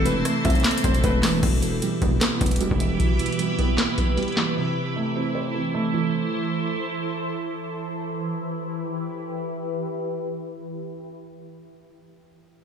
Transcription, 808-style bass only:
0.00 0.24 E1 loud
0.45 0.64 B1 loud
0.84 1.03 E1 loud
1.04 1.41 E1 loud
1.43 1.81 E1 loud
2.02 2.21 E1 loud
2.41 2.70 E1 loud
2.71 2.99 E1 loud

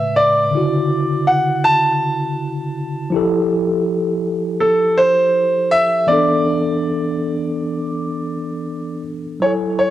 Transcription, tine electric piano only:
0.00 0.48 A2 medium
0.00 0.50 C#3 medium
0.00 0.49 G#3 medium
0.00 0.51 B4 medium
0.51 3.09 C#3 medium
0.51 3.08 D3 medium
0.51 3.10 E4 medium
0.57 3.11 F#4 medium
3.10 6.04 F3 medium
3.10 6.05 E4 medium
3.10 6.06 G4 medium
3.16 6.07 A4 medium
6.07 9.00 E3 medium
6.07 9.01 B3 medium
6.07 9.02 D4 medium
6.13 9.03 A4 medium
9.40 9.90 F#3 medium
9.40 9.90 E4 medium
9.40 9.90 G#5 medium
9.46 9.90 A4 medium

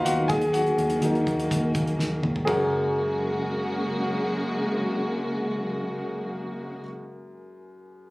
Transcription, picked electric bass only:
0.05 0.25 D#2 medium
0.30 0.69 D#2 medium
0.78 0.98 D#2 medium
1.02 1.22 D#2 medium
1.27 1.47 D#2 medium
1.51 1.71 D#2 medium
1.75 1.95 D#2 medium
1.99 2.19 D#2 medium
2.23 2.43 D#2 medium
2.47 6.81 F#1 medium

